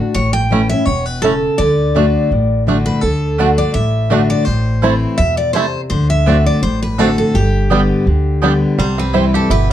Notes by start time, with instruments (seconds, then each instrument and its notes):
Already playing: steel-string acoustic guitar A2
0.00 steel-string acoustic guitar D4 F#4
0.14 upright bass A1, steel-string acoustic guitar A2 C#5
0.33 steel-string acoustic guitar G5
0.50 steel-string acoustic guitar E3 A3 C#4 E4, five-string banjo A3 C#4 E4
0.69 steel-string acoustic guitar C#4 E4 E5
0.85 upright bass E1, steel-string acoustic guitar B2 C#5
1.06 steel-string acoustic guitar B4
1.22 steel-string acoustic guitar C#3 A4, five-string banjo A3 C#4 E4
1.58 upright bass D2, steel-string acoustic guitar D3 D5
1.95 steel-string acoustic guitar D3 A3 D4 F#4, five-string banjo A3 D4
2.31 upright bass A1, steel-string acoustic guitar A2
2.67 steel-string acoustic guitar D3 A3 D4 F#4, five-string banjo A3 D4
2.86 steel-string acoustic guitar B4
3.01 upright bass D2, steel-string acoustic guitar D3 A4
3.38 steel-string acoustic guitar D3 A3 D4 F#4, mandolin A3 F#4 D5 F#5, five-string banjo A3 D4
3.58 steel-string acoustic guitar D5
3.74 upright bass A1, steel-string acoustic guitar A2 E5
4.10 steel-string acoustic guitar D3 A3 D4 F#4, mandolin A3 F#4 D5 F#5, five-string banjo A3 D4
4.30 steel-string acoustic guitar D5
4.45 upright bass A1, steel-string acoustic guitar A2 C5
4.82 steel-string acoustic guitar E3 A3 C4 E4, mandolin A3 E4 C5 A5, five-string banjo A3 C4 E4
5.18 upright bass E2, steel-string acoustic guitar B2 E5
5.37 steel-string acoustic guitar D5
5.53 steel-string acoustic guitar C3 C5, mandolin A3 E4 C5 A5, five-string banjo A3 C4 E4
5.90 upright bass D2, steel-string acoustic guitar D3 C5
6.10 steel-string acoustic guitar E5
6.26 steel-string acoustic guitar D3 A3 C4 F#4, five-string banjo A3 C4 D4, mandolin C4 F#4 D5 A5
6.46 steel-string acoustic guitar D5
6.62 upright bass A1, steel-string acoustic guitar A2 C5
6.83 steel-string acoustic guitar B4
6.98 steel-string acoustic guitar D3 A3 C4 F#4 A4, five-string banjo A3 C4 D4, mandolin C4 F#4 D5 A5
7.18 steel-string acoustic guitar A4
7.34 upright bass G1, steel-string acoustic guitar G2 G4
7.70 steel-string acoustic guitar D3 G3 B3 G4, five-string banjo G3 B3 D4, mandolin B3 G4 D5 G5
8.06 upright bass D2, steel-string acoustic guitar D3
8.42 steel-string acoustic guitar D3 G3 B3 G4, five-string banjo G3 B3 D4, mandolin B3 G4 D5 G5
8.78 upright bass C2, steel-string acoustic guitar C3 C5, five-string banjo G3
8.98 five-string banjo C4, steel-string acoustic guitar B4
9.13 steel-string acoustic guitar E3 G3 C4 E4, mandolin C4 E4 C5 G5, five-string banjo E4
9.34 five-string banjo G4, steel-string acoustic guitar A4
9.50 upright bass G1, steel-string acoustic guitar B2 B4, five-string banjo E4